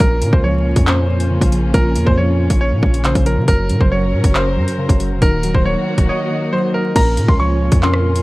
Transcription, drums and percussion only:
0.00 kick loud
0.00 closed hi-hat medium
0.22 closed hi-hat medium
0.33 kick medium
0.76 kick medium
0.76 closed hi-hat medium
0.87 clap loud
1.20 closed hi-hat medium
1.41 kick loud
1.41 closed hi-hat medium
1.52 closed hi-hat medium
1.74 kick loud
1.74 closed hi-hat medium
1.96 closed hi-hat medium
2.07 kick medium
2.50 kick loud
2.50 closed hi-hat medium
2.83 kick medium
2.94 closed hi-hat medium
3.04 clap loud
3.04 closed hi-hat soft
3.15 kick loud
3.15 closed hi-hat medium
3.26 closed hi-hat medium
3.48 kick loud
3.48 closed hi-hat medium
3.69 closed hi-hat medium
3.81 kick loud
4.24 kick medium
4.24 closed hi-hat medium
4.35 clap loud
4.68 closed hi-hat medium
4.89 kick loud
4.89 closed hi-hat medium
5.00 closed hi-hat medium
5.22 kick loud
5.22 closed hi-hat medium
5.43 closed hi-hat medium
5.54 kick medium
5.98 kick medium
5.98 closed hi-hat medium
6.96 kick loud
6.96 closed hi-hat medium
6.96 crash loud
7.17 closed hi-hat medium
7.28 kick medium
7.72 kick medium
7.72 closed hi-hat medium
7.83 clap loud
7.94 cross-stick loud
8.16 closed hi-hat medium

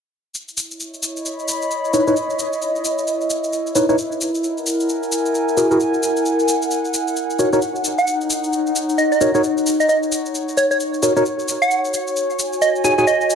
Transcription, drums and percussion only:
0.35 cabasa soft
0.48 cabasa soft
0.57 cabasa medium
0.71 cabasa soft
0.80 cabasa soft
0.94 cabasa soft
1.03 cabasa medium
1.17 cabasa soft
1.25 cabasa soft
1.39 cabasa soft
1.48 cabasa medium
1.62 cabasa soft
1.71 cabasa soft
1.85 cabasa soft
1.94 cabasa medium
2.07 cabasa soft
2.16 cabasa soft
2.30 cabasa soft
2.39 cabasa medium
2.53 cabasa soft
2.62 cabasa soft
2.76 cabasa soft
2.85 cabasa medium
2.98 cabasa soft
3.07 cabasa soft
3.21 cabasa soft
3.30 cabasa medium
3.44 cabasa soft
3.53 cabasa soft
3.67 cabasa soft
3.75 cabasa medium
3.89 cabasa soft
3.98 cabasa soft
4.12 cabasa soft
4.21 cabasa medium
4.35 cabasa soft
4.44 cabasa soft
4.57 cabasa soft
4.66 cabasa medium
4.80 cabasa soft
4.89 cabasa soft
5.03 cabasa soft
5.12 cabasa medium
5.26 cabasa soft
5.35 cabasa soft
5.48 cabasa soft
5.57 cabasa medium
5.71 cabasa soft
5.80 cabasa soft
5.94 cabasa soft
6.03 cabasa medium
6.17 cabasa soft
6.26 cabasa soft
6.39 cabasa soft
6.48 cabasa medium
6.62 cabasa soft
6.71 cabasa soft
6.85 cabasa soft
6.94 cabasa medium
7.07 cabasa soft
7.16 cabasa soft
7.30 cabasa soft
7.39 cabasa medium
7.53 cabasa soft
7.62 cabasa soft
7.76 cabasa soft
7.84 cabasa medium
7.98 cabasa soft
8.07 cabasa soft
8.21 cabasa soft
8.30 cabasa medium
8.44 cabasa soft
8.53 cabasa soft
8.67 cabasa soft
8.76 cabasa medium
8.89 cabasa soft
8.98 cabasa soft
9.12 cabasa soft
9.21 cabasa medium
9.35 cabasa soft
9.44 cabasa soft
9.57 cabasa soft
9.66 cabasa medium
9.80 cabasa soft
9.89 cabasa soft
10.03 cabasa soft
10.12 cabasa medium
10.26 cabasa soft
10.35 cabasa soft
10.48 cabasa soft
10.57 cabasa medium
10.71 cabasa soft
10.80 cabasa soft
10.94 cabasa soft
11.03 cabasa medium
11.17 cabasa soft
11.26 cabasa soft
11.39 cabasa soft
11.48 cabasa medium
11.62 cabasa soft
11.71 cabasa soft
11.85 cabasa soft
11.94 cabasa medium
12.07 cabasa soft
12.16 cabasa soft
12.30 cabasa soft
12.39 cabasa medium
12.53 cabasa soft
12.62 cabasa soft
12.75 cabasa soft
12.84 cabasa medium
12.98 cabasa soft
13.07 cabasa soft
13.21 cabasa soft
13.30 cabasa medium

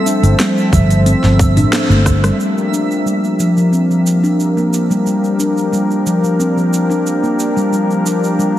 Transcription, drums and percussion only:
0.06 open hi-hat soft
0.06 shaker medium
0.23 open hi-hat soft
0.23 shaker soft
0.40 snare loud
0.40 open hi-hat medium
0.40 shaker soft
0.58 shaker soft
0.73 kick medium
0.73 mid tom medium
0.73 open hi-hat soft
0.73 shaker medium
0.90 open hi-hat soft
0.90 shaker soft
1.06 open hi-hat medium
1.06 shaker soft
1.24 snare soft
1.24 shaker soft
1.39 kick loud
1.39 open hi-hat soft
1.39 shaker medium
1.57 mid tom medium
1.57 open hi-hat medium
1.57 shaker soft
1.73 snare loud
1.73 open hi-hat soft
1.73 shaker soft
1.91 shaker soft
2.06 kick medium
2.06 cross-stick medium
2.06 open hi-hat medium
2.06 shaker medium
2.24 cross-stick medium
2.24 open hi-hat soft
2.24 shaker soft
2.40 shaker soft
2.58 shaker soft
2.74 shaker medium
2.91 shaker soft
3.07 shaker soft
3.24 shaker soft
3.40 shaker medium
3.57 shaker soft
3.73 shaker soft
3.91 shaker soft
4.07 shaker medium
4.24 shaker soft
4.40 shaker soft
4.58 shaker soft
4.74 shaker medium
4.91 shaker soft
5.07 shaker soft
5.24 shaker soft
5.40 shaker medium
5.58 shaker soft
5.73 shaker soft
5.91 shaker soft
6.07 shaker medium
6.24 shaker soft
6.40 shaker soft
6.58 shaker soft
6.74 shaker medium
6.91 shaker soft
7.07 shaker soft
7.24 shaker soft
7.40 shaker medium
7.57 shaker soft
7.73 shaker soft
7.91 shaker soft
8.06 shaker medium
8.24 shaker soft
8.40 shaker soft

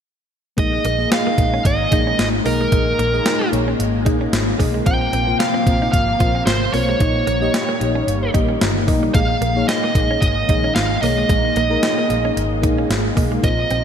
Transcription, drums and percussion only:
0.58 kick loud
0.58 closed hi-hat medium
0.85 closed hi-hat medium
1.12 snare loud
1.12 closed hi-hat medium
1.38 kick medium
1.38 closed hi-hat medium
1.65 kick medium
1.65 closed hi-hat medium
1.92 kick medium
1.92 closed hi-hat medium
2.19 snare loud
2.19 closed hi-hat medium
2.46 open hi-hat medium
2.72 kick medium
2.72 closed hi-hat medium
2.99 closed hi-hat medium
3.26 snare loud
3.26 closed hi-hat loud
3.53 closed hi-hat medium
3.80 closed hi-hat medium
4.06 kick medium
4.06 closed hi-hat medium
4.33 snare loud
4.33 closed hi-hat medium
4.60 kick medium
4.60 open hi-hat medium
4.86 kick medium
4.86 closed hi-hat medium
5.13 closed hi-hat medium
5.40 snare loud
5.40 closed hi-hat medium
5.67 kick medium
5.67 closed hi-hat medium
5.93 kick medium
5.93 closed hi-hat medium
6.20 kick medium
6.20 closed hi-hat medium
6.47 snare loud
6.47 closed hi-hat medium
6.74 open hi-hat medium
7.00 kick medium
7.00 closed hi-hat medium
7.27 closed hi-hat medium
7.54 snare loud
7.54 closed hi-hat loud
7.81 closed hi-hat medium
8.08 closed hi-hat medium
8.35 kick medium
8.35 closed hi-hat medium
8.61 snare loud
8.61 closed hi-hat medium
8.88 kick medium
8.88 open hi-hat medium
9.14 kick medium
9.14 closed hi-hat medium
9.42 closed hi-hat medium
9.69 snare loud
9.69 closed hi-hat loud
9.95 kick medium
9.95 closed hi-hat medium
10.22 kick medium
10.22 closed hi-hat medium
10.49 kick medium
10.49 closed hi-hat medium
10.76 snare loud
10.76 closed hi-hat medium
11.03 open hi-hat medium
11.29 kick medium
11.29 closed hi-hat medium
11.56 closed hi-hat medium
11.83 snare loud
11.83 closed hi-hat loud
12.10 closed hi-hat medium
12.37 closed hi-hat medium
12.63 kick medium
12.63 closed hi-hat medium
12.91 snare loud
12.91 closed hi-hat medium
13.17 kick medium
13.17 open hi-hat medium
13.44 kick medium
13.44 closed hi-hat medium
13.71 closed hi-hat medium

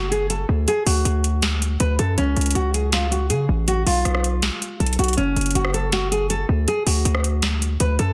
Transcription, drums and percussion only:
0.12 closed hi-hat medium
0.30 closed hi-hat medium
0.68 closed hi-hat medium
0.87 open hi-hat medium
1.05 closed hi-hat medium
1.24 closed hi-hat medium
1.42 snare loud
1.42 closed hi-hat medium
1.62 closed hi-hat medium
1.80 closed hi-hat medium
1.99 closed hi-hat medium
2.18 closed hi-hat medium
2.37 closed hi-hat soft
2.41 closed hi-hat medium
2.46 closed hi-hat medium
2.51 closed hi-hat medium
2.55 closed hi-hat medium
2.74 closed hi-hat medium
2.92 snare loud
2.92 closed hi-hat medium
3.12 closed hi-hat medium
3.30 closed hi-hat medium
3.68 closed hi-hat medium
3.87 open hi-hat medium
4.05 cross-stick medium
4.05 closed hi-hat medium
4.15 cross-stick medium
4.24 closed hi-hat medium
4.42 snare loud
4.42 closed hi-hat medium
4.62 closed hi-hat medium
4.80 closed hi-hat soft
4.86 closed hi-hat medium
4.93 closed hi-hat medium
4.99 closed hi-hat medium
5.04 closed hi-hat medium
5.08 closed hi-hat medium
5.13 closed hi-hat medium
5.18 closed hi-hat medium
5.36 closed hi-hat soft
5.41 closed hi-hat medium
5.46 closed hi-hat medium
5.51 closed hi-hat medium
5.55 closed hi-hat medium
5.65 cross-stick medium
5.74 closed hi-hat medium
5.92 snare loud
5.92 closed hi-hat medium
6.12 closed hi-hat medium
6.30 closed hi-hat medium
6.68 closed hi-hat medium
6.87 open hi-hat medium
7.05 closed hi-hat medium
7.15 cross-stick medium
7.24 closed hi-hat medium
7.42 snare loud
7.42 closed hi-hat medium
7.62 closed hi-hat medium
7.80 closed hi-hat medium
7.99 closed hi-hat medium

